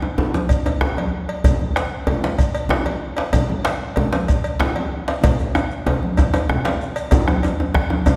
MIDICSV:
0, 0, Header, 1, 5, 480
1, 0, Start_track
1, 0, Tempo, 315292
1, 2201, Time_signature, 12, 3, 24, 8
1, 12427, End_track
2, 0, Start_track
2, 0, Title_t, "Bombo"
2, 279, Note_on_c, 9, 37, 29
2, 431, Note_off_c, 9, 37, 0
2, 757, Note_on_c, 9, 37, 27
2, 757, Note_on_c, 9, 43, 88
2, 909, Note_off_c, 9, 37, 0
2, 909, Note_off_c, 9, 43, 0
2, 1234, Note_on_c, 9, 37, 97
2, 1386, Note_off_c, 9, 37, 0
2, 1478, Note_on_c, 9, 37, 27
2, 1630, Note_off_c, 9, 37, 0
2, 2196, Note_on_c, 9, 43, 96
2, 2349, Note_off_c, 9, 43, 0
2, 2680, Note_on_c, 9, 37, 96
2, 2832, Note_off_c, 9, 37, 0
2, 3164, Note_on_c, 9, 37, 28
2, 3316, Note_off_c, 9, 37, 0
2, 3634, Note_on_c, 9, 37, 29
2, 3634, Note_on_c, 9, 43, 89
2, 3787, Note_off_c, 9, 37, 0
2, 3787, Note_off_c, 9, 43, 0
2, 4123, Note_on_c, 9, 37, 92
2, 4275, Note_off_c, 9, 37, 0
2, 4374, Note_on_c, 9, 37, 28
2, 4527, Note_off_c, 9, 37, 0
2, 5078, Note_on_c, 9, 43, 87
2, 5230, Note_off_c, 9, 43, 0
2, 5559, Note_on_c, 9, 37, 84
2, 5712, Note_off_c, 9, 37, 0
2, 6059, Note_on_c, 9, 37, 29
2, 6211, Note_off_c, 9, 37, 0
2, 6533, Note_on_c, 9, 37, 30
2, 6533, Note_on_c, 9, 43, 95
2, 6686, Note_off_c, 9, 37, 0
2, 6686, Note_off_c, 9, 43, 0
2, 7010, Note_on_c, 9, 37, 96
2, 7162, Note_off_c, 9, 37, 0
2, 7256, Note_on_c, 9, 37, 27
2, 7408, Note_off_c, 9, 37, 0
2, 7975, Note_on_c, 9, 43, 91
2, 8127, Note_off_c, 9, 43, 0
2, 8450, Note_on_c, 9, 37, 93
2, 8602, Note_off_c, 9, 37, 0
2, 9410, Note_on_c, 9, 43, 95
2, 9562, Note_off_c, 9, 43, 0
2, 9655, Note_on_c, 9, 37, 31
2, 9807, Note_off_c, 9, 37, 0
2, 9889, Note_on_c, 9, 37, 93
2, 10041, Note_off_c, 9, 37, 0
2, 10370, Note_on_c, 9, 37, 33
2, 10523, Note_off_c, 9, 37, 0
2, 10836, Note_on_c, 9, 43, 104
2, 10989, Note_off_c, 9, 43, 0
2, 11077, Note_on_c, 9, 37, 90
2, 11230, Note_off_c, 9, 37, 0
2, 11568, Note_on_c, 9, 37, 34
2, 11721, Note_off_c, 9, 37, 0
2, 11799, Note_on_c, 9, 37, 106
2, 11799, Note_on_c, 9, 43, 101
2, 11952, Note_off_c, 9, 37, 0
2, 11952, Note_off_c, 9, 43, 0
2, 12279, Note_on_c, 9, 37, 33
2, 12427, Note_off_c, 9, 37, 0
2, 12427, End_track
3, 0, Start_track
3, 0, Title_t, "Djembe"
3, 36, Note_on_c, 9, 63, 77
3, 189, Note_off_c, 9, 63, 0
3, 278, Note_on_c, 9, 62, 73
3, 278, Note_on_c, 9, 63, 74
3, 278, Note_on_c, 9, 64, 83
3, 430, Note_off_c, 9, 62, 0
3, 430, Note_off_c, 9, 64, 0
3, 431, Note_off_c, 9, 63, 0
3, 522, Note_on_c, 9, 63, 94
3, 674, Note_off_c, 9, 63, 0
3, 1002, Note_on_c, 9, 63, 82
3, 1155, Note_off_c, 9, 63, 0
3, 1234, Note_on_c, 9, 62, 74
3, 1234, Note_on_c, 9, 64, 69
3, 1243, Note_on_c, 9, 63, 78
3, 1386, Note_off_c, 9, 62, 0
3, 1386, Note_off_c, 9, 64, 0
3, 1395, Note_off_c, 9, 63, 0
3, 1474, Note_on_c, 9, 63, 54
3, 1626, Note_off_c, 9, 63, 0
3, 1712, Note_on_c, 9, 62, 25
3, 1865, Note_off_c, 9, 62, 0
3, 2197, Note_on_c, 9, 62, 65
3, 2197, Note_on_c, 9, 64, 66
3, 2349, Note_off_c, 9, 62, 0
3, 2349, Note_off_c, 9, 64, 0
3, 2424, Note_on_c, 9, 63, 52
3, 2576, Note_off_c, 9, 63, 0
3, 2692, Note_on_c, 9, 62, 78
3, 2844, Note_off_c, 9, 62, 0
3, 3150, Note_on_c, 9, 62, 75
3, 3150, Note_on_c, 9, 64, 74
3, 3302, Note_off_c, 9, 62, 0
3, 3302, Note_off_c, 9, 64, 0
3, 3381, Note_on_c, 9, 63, 59
3, 3408, Note_on_c, 9, 62, 78
3, 3534, Note_off_c, 9, 63, 0
3, 3561, Note_off_c, 9, 62, 0
3, 4099, Note_on_c, 9, 62, 68
3, 4099, Note_on_c, 9, 64, 69
3, 4115, Note_off_c, 9, 62, 0
3, 4115, Note_on_c, 9, 62, 75
3, 4251, Note_off_c, 9, 64, 0
3, 4267, Note_off_c, 9, 62, 0
3, 4345, Note_on_c, 9, 63, 57
3, 4497, Note_off_c, 9, 63, 0
3, 4583, Note_on_c, 9, 62, 25
3, 4736, Note_off_c, 9, 62, 0
3, 4841, Note_on_c, 9, 62, 74
3, 4993, Note_off_c, 9, 62, 0
3, 5068, Note_on_c, 9, 62, 75
3, 5068, Note_on_c, 9, 64, 70
3, 5220, Note_off_c, 9, 62, 0
3, 5220, Note_off_c, 9, 64, 0
3, 5322, Note_on_c, 9, 63, 55
3, 5475, Note_off_c, 9, 63, 0
3, 5552, Note_on_c, 9, 62, 81
3, 5705, Note_off_c, 9, 62, 0
3, 6045, Note_on_c, 9, 62, 77
3, 6045, Note_on_c, 9, 64, 79
3, 6197, Note_off_c, 9, 62, 0
3, 6197, Note_off_c, 9, 64, 0
3, 6281, Note_on_c, 9, 62, 82
3, 6283, Note_on_c, 9, 63, 56
3, 6433, Note_off_c, 9, 62, 0
3, 6435, Note_off_c, 9, 63, 0
3, 6996, Note_on_c, 9, 62, 80
3, 7007, Note_off_c, 9, 62, 0
3, 7007, Note_on_c, 9, 62, 68
3, 7007, Note_on_c, 9, 64, 65
3, 7160, Note_off_c, 9, 62, 0
3, 7160, Note_off_c, 9, 64, 0
3, 7239, Note_on_c, 9, 63, 53
3, 7391, Note_off_c, 9, 63, 0
3, 7495, Note_on_c, 9, 62, 26
3, 7648, Note_off_c, 9, 62, 0
3, 7732, Note_on_c, 9, 62, 73
3, 7885, Note_off_c, 9, 62, 0
3, 7971, Note_on_c, 9, 62, 80
3, 7971, Note_on_c, 9, 63, 97
3, 7971, Note_on_c, 9, 64, 69
3, 8123, Note_off_c, 9, 63, 0
3, 8124, Note_off_c, 9, 62, 0
3, 8124, Note_off_c, 9, 64, 0
3, 8219, Note_on_c, 9, 63, 56
3, 8371, Note_off_c, 9, 63, 0
3, 8451, Note_on_c, 9, 63, 105
3, 8603, Note_off_c, 9, 63, 0
3, 8927, Note_on_c, 9, 63, 100
3, 8932, Note_on_c, 9, 62, 73
3, 8932, Note_on_c, 9, 64, 71
3, 9079, Note_off_c, 9, 63, 0
3, 9085, Note_off_c, 9, 62, 0
3, 9085, Note_off_c, 9, 64, 0
3, 9177, Note_on_c, 9, 63, 63
3, 9329, Note_off_c, 9, 63, 0
3, 9417, Note_on_c, 9, 63, 97
3, 9570, Note_off_c, 9, 63, 0
3, 9645, Note_on_c, 9, 63, 100
3, 9798, Note_off_c, 9, 63, 0
3, 9886, Note_on_c, 9, 62, 64
3, 9886, Note_on_c, 9, 64, 65
3, 10038, Note_off_c, 9, 62, 0
3, 10038, Note_off_c, 9, 64, 0
3, 10128, Note_on_c, 9, 62, 95
3, 10134, Note_on_c, 9, 63, 53
3, 10280, Note_off_c, 9, 62, 0
3, 10286, Note_off_c, 9, 63, 0
3, 10839, Note_on_c, 9, 62, 82
3, 10839, Note_on_c, 9, 64, 83
3, 10991, Note_off_c, 9, 62, 0
3, 10991, Note_off_c, 9, 64, 0
3, 11085, Note_on_c, 9, 63, 87
3, 11087, Note_off_c, 9, 63, 0
3, 11087, Note_on_c, 9, 63, 67
3, 11239, Note_off_c, 9, 63, 0
3, 11335, Note_on_c, 9, 63, 85
3, 11487, Note_off_c, 9, 63, 0
3, 11570, Note_on_c, 9, 63, 81
3, 11722, Note_off_c, 9, 63, 0
3, 11791, Note_on_c, 9, 62, 92
3, 11943, Note_off_c, 9, 62, 0
3, 12027, Note_on_c, 9, 63, 72
3, 12031, Note_off_c, 9, 63, 0
3, 12031, Note_on_c, 9, 63, 83
3, 12183, Note_off_c, 9, 63, 0
3, 12272, Note_on_c, 9, 64, 94
3, 12279, Note_on_c, 9, 63, 85
3, 12424, Note_off_c, 9, 64, 0
3, 12427, Note_off_c, 9, 63, 0
3, 12427, End_track
4, 0, Start_track
4, 0, Title_t, "Shekere"
4, 523, Note_on_c, 9, 82, 18
4, 675, Note_off_c, 9, 82, 0
4, 767, Note_on_c, 9, 82, 62
4, 920, Note_off_c, 9, 82, 0
4, 1004, Note_on_c, 9, 82, 19
4, 1157, Note_off_c, 9, 82, 0
4, 2209, Note_on_c, 9, 82, 59
4, 2361, Note_off_c, 9, 82, 0
4, 2697, Note_on_c, 9, 82, 19
4, 2849, Note_off_c, 9, 82, 0
4, 3410, Note_on_c, 9, 82, 15
4, 3562, Note_off_c, 9, 82, 0
4, 3645, Note_on_c, 9, 82, 55
4, 3797, Note_off_c, 9, 82, 0
4, 3888, Note_on_c, 9, 82, 19
4, 4040, Note_off_c, 9, 82, 0
4, 5081, Note_on_c, 9, 82, 53
4, 5233, Note_off_c, 9, 82, 0
4, 5563, Note_on_c, 9, 82, 17
4, 5715, Note_off_c, 9, 82, 0
4, 6293, Note_on_c, 9, 82, 16
4, 6446, Note_off_c, 9, 82, 0
4, 6527, Note_on_c, 9, 82, 54
4, 6679, Note_off_c, 9, 82, 0
4, 6775, Note_on_c, 9, 82, 17
4, 6928, Note_off_c, 9, 82, 0
4, 7967, Note_on_c, 9, 82, 55
4, 8119, Note_off_c, 9, 82, 0
4, 8200, Note_on_c, 9, 82, 19
4, 8352, Note_off_c, 9, 82, 0
4, 8450, Note_on_c, 9, 82, 17
4, 8602, Note_off_c, 9, 82, 0
4, 8693, Note_on_c, 9, 82, 18
4, 8845, Note_off_c, 9, 82, 0
4, 9404, Note_on_c, 9, 82, 53
4, 9556, Note_off_c, 9, 82, 0
4, 9655, Note_on_c, 9, 82, 19
4, 9807, Note_off_c, 9, 82, 0
4, 10127, Note_on_c, 9, 82, 20
4, 10280, Note_off_c, 9, 82, 0
4, 10368, Note_on_c, 9, 82, 20
4, 10520, Note_off_c, 9, 82, 0
4, 10605, Note_on_c, 9, 82, 22
4, 10757, Note_off_c, 9, 82, 0
4, 10832, Note_on_c, 9, 82, 62
4, 10985, Note_off_c, 9, 82, 0
4, 11326, Note_on_c, 9, 82, 21
4, 11479, Note_off_c, 9, 82, 0
4, 12272, Note_on_c, 9, 82, 60
4, 12424, Note_off_c, 9, 82, 0
4, 12427, End_track
5, 0, Start_track
5, 0, Title_t, "Drums"
5, 272, Note_on_c, 9, 64, 73
5, 424, Note_off_c, 9, 64, 0
5, 512, Note_on_c, 9, 63, 55
5, 664, Note_off_c, 9, 63, 0
5, 748, Note_on_c, 9, 56, 57
5, 900, Note_off_c, 9, 56, 0
5, 1009, Note_on_c, 9, 56, 50
5, 1161, Note_off_c, 9, 56, 0
5, 1231, Note_on_c, 9, 64, 75
5, 1383, Note_off_c, 9, 64, 0
5, 1485, Note_on_c, 9, 63, 58
5, 1493, Note_on_c, 9, 56, 49
5, 1637, Note_off_c, 9, 63, 0
5, 1645, Note_off_c, 9, 56, 0
5, 1964, Note_on_c, 9, 56, 50
5, 2116, Note_off_c, 9, 56, 0
5, 2202, Note_on_c, 9, 56, 64
5, 2204, Note_on_c, 9, 64, 66
5, 2354, Note_off_c, 9, 56, 0
5, 2357, Note_off_c, 9, 64, 0
5, 2449, Note_on_c, 9, 63, 53
5, 2601, Note_off_c, 9, 63, 0
5, 2683, Note_on_c, 9, 56, 50
5, 2836, Note_off_c, 9, 56, 0
5, 3151, Note_on_c, 9, 56, 52
5, 3174, Note_on_c, 9, 64, 70
5, 3303, Note_off_c, 9, 56, 0
5, 3326, Note_off_c, 9, 64, 0
5, 3407, Note_on_c, 9, 63, 58
5, 3559, Note_off_c, 9, 63, 0
5, 3631, Note_on_c, 9, 56, 55
5, 3783, Note_off_c, 9, 56, 0
5, 3875, Note_on_c, 9, 56, 57
5, 4028, Note_off_c, 9, 56, 0
5, 4123, Note_on_c, 9, 64, 76
5, 4275, Note_off_c, 9, 64, 0
5, 4350, Note_on_c, 9, 56, 49
5, 4360, Note_on_c, 9, 63, 54
5, 4502, Note_off_c, 9, 56, 0
5, 4512, Note_off_c, 9, 63, 0
5, 4820, Note_on_c, 9, 56, 55
5, 4972, Note_off_c, 9, 56, 0
5, 5067, Note_on_c, 9, 56, 70
5, 5076, Note_on_c, 9, 64, 69
5, 5220, Note_off_c, 9, 56, 0
5, 5228, Note_off_c, 9, 64, 0
5, 5320, Note_on_c, 9, 63, 55
5, 5473, Note_off_c, 9, 63, 0
5, 5549, Note_on_c, 9, 56, 51
5, 5701, Note_off_c, 9, 56, 0
5, 6027, Note_on_c, 9, 56, 52
5, 6042, Note_on_c, 9, 64, 73
5, 6179, Note_off_c, 9, 56, 0
5, 6194, Note_off_c, 9, 64, 0
5, 6284, Note_on_c, 9, 63, 59
5, 6437, Note_off_c, 9, 63, 0
5, 6521, Note_on_c, 9, 56, 52
5, 6673, Note_off_c, 9, 56, 0
5, 6762, Note_on_c, 9, 56, 52
5, 6914, Note_off_c, 9, 56, 0
5, 7011, Note_on_c, 9, 64, 79
5, 7163, Note_off_c, 9, 64, 0
5, 7242, Note_on_c, 9, 56, 49
5, 7250, Note_on_c, 9, 63, 67
5, 7394, Note_off_c, 9, 56, 0
5, 7402, Note_off_c, 9, 63, 0
5, 7735, Note_on_c, 9, 56, 50
5, 7887, Note_off_c, 9, 56, 0
5, 7967, Note_on_c, 9, 64, 76
5, 7972, Note_on_c, 9, 56, 66
5, 8119, Note_off_c, 9, 64, 0
5, 8124, Note_off_c, 9, 56, 0
5, 8449, Note_on_c, 9, 56, 44
5, 8601, Note_off_c, 9, 56, 0
5, 8932, Note_on_c, 9, 56, 52
5, 8934, Note_on_c, 9, 64, 71
5, 9085, Note_off_c, 9, 56, 0
5, 9086, Note_off_c, 9, 64, 0
5, 9174, Note_on_c, 9, 63, 56
5, 9326, Note_off_c, 9, 63, 0
5, 9399, Note_on_c, 9, 56, 58
5, 9552, Note_off_c, 9, 56, 0
5, 9648, Note_on_c, 9, 56, 55
5, 9800, Note_off_c, 9, 56, 0
5, 9900, Note_on_c, 9, 64, 76
5, 10052, Note_off_c, 9, 64, 0
5, 10120, Note_on_c, 9, 56, 52
5, 10140, Note_on_c, 9, 63, 53
5, 10273, Note_off_c, 9, 56, 0
5, 10292, Note_off_c, 9, 63, 0
5, 10595, Note_on_c, 9, 56, 59
5, 10747, Note_off_c, 9, 56, 0
5, 10825, Note_on_c, 9, 56, 65
5, 10844, Note_on_c, 9, 64, 81
5, 10977, Note_off_c, 9, 56, 0
5, 10996, Note_off_c, 9, 64, 0
5, 11082, Note_on_c, 9, 63, 69
5, 11234, Note_off_c, 9, 63, 0
5, 11314, Note_on_c, 9, 56, 49
5, 11466, Note_off_c, 9, 56, 0
5, 11791, Note_on_c, 9, 56, 54
5, 11943, Note_off_c, 9, 56, 0
5, 12043, Note_on_c, 9, 63, 65
5, 12195, Note_off_c, 9, 63, 0
5, 12271, Note_on_c, 9, 56, 59
5, 12281, Note_on_c, 9, 64, 87
5, 12424, Note_off_c, 9, 56, 0
5, 12427, Note_off_c, 9, 64, 0
5, 12427, End_track
0, 0, End_of_file